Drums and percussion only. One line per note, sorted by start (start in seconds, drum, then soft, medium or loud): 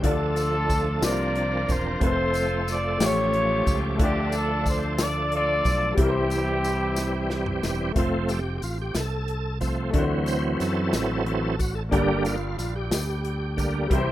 0.04 kick loud
0.04 closed hi-hat medium
0.36 closed hi-hat medium
0.36 tambourine medium
0.69 kick medium
0.69 closed hi-hat soft
0.69 tambourine medium
1.02 snare medium
1.02 closed hi-hat medium
1.02 tambourine medium
1.35 closed hi-hat soft
1.69 kick medium
1.69 closed hi-hat soft
1.69 tambourine medium
2.01 kick loud
2.01 closed hi-hat medium
2.34 closed hi-hat medium
2.34 tambourine medium
2.68 snare soft
2.68 closed hi-hat soft
2.68 tambourine medium
3.00 snare loud
3.00 closed hi-hat medium
3.00 tambourine medium
3.33 closed hi-hat soft
3.66 kick medium
3.66 closed hi-hat soft
3.66 tambourine medium
3.99 kick loud
3.99 closed hi-hat medium
4.32 closed hi-hat medium
4.32 tambourine medium
4.66 kick medium
4.66 closed hi-hat soft
4.66 tambourine medium
4.98 snare loud
4.98 closed hi-hat medium
4.98 tambourine medium
5.32 closed hi-hat soft
5.65 kick medium
5.65 closed hi-hat soft
5.65 tambourine medium
5.98 kick loud
5.98 closed hi-hat medium
6.30 closed hi-hat medium
6.30 tambourine medium
6.64 closed hi-hat soft
6.64 tambourine medium
6.96 snare soft
6.96 tambourine medium
7.30 snare medium
7.46 mid tom medium
7.63 snare medium
7.63 tambourine medium
7.96 kick loud
7.96 closed hi-hat medium
8.29 closed hi-hat soft
8.29 tambourine medium
8.62 closed hi-hat medium
8.62 tambourine soft
8.95 snare medium
8.95 closed hi-hat medium
8.95 tambourine medium
9.28 closed hi-hat soft
9.61 kick medium
9.61 closed hi-hat medium
9.61 tambourine soft
9.94 kick loud
9.94 closed hi-hat medium
10.26 closed hi-hat medium
10.26 tambourine medium
10.60 snare soft
10.60 closed hi-hat medium
10.60 tambourine medium
10.93 snare loud
10.93 closed hi-hat medium
10.93 tambourine medium
11.26 closed hi-hat soft
11.59 kick medium
11.59 closed hi-hat medium
11.59 tambourine medium
11.92 kick medium
11.92 closed hi-hat medium
12.25 closed hi-hat soft
12.25 tambourine medium
12.59 snare soft
12.59 closed hi-hat medium
12.59 tambourine medium
12.91 snare loud
12.91 closed hi-hat medium
12.91 tambourine medium
13.25 closed hi-hat medium
13.58 kick medium
13.58 closed hi-hat medium
13.58 tambourine soft
13.91 kick loud
13.91 closed hi-hat medium